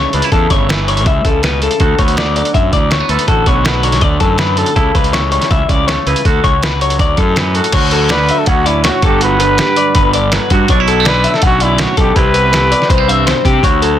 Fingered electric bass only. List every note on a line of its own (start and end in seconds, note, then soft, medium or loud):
0.13 0.21 C#2 medium
0.32 0.46 E2 medium
0.51 1.06 G1 medium
1.06 1.20 C#2 medium
1.25 1.67 C#2 medium
1.80 1.94 D2 medium
1.99 2.41 D2 medium
2.55 2.69 F#2 medium
2.73 3.01 D2 medium
3.09 3.16 D2 medium
3.28 3.42 A1 medium
3.46 4.02 B1 medium
4.02 4.16 D2 medium
4.20 4.63 F#2 medium
4.76 4.90 C#2 medium
4.95 5.38 C#2 medium
5.51 5.65 C#2 loud
5.69 5.97 C#2 medium
6.06 6.14 C#2 medium
6.25 6.39 D2 medium
6.44 6.99 C#2 medium
6.99 7.13 D2 medium
7.18 7.60 F#2 medium
7.73 8.29 D2 loud
8.47 8.89 D2 medium
9.02 9.59 G1 medium
9.95 10.37 G1 medium
10.50 10.64 G2 medium
10.69 11.25 B1 loud
11.43 11.85 B1 medium
11.98 12.12 B1 medium
12.16 12.72 C2 medium
12.90 13.32 C2 medium
13.45 13.59 C3 medium
13.63 13.99 D2 loud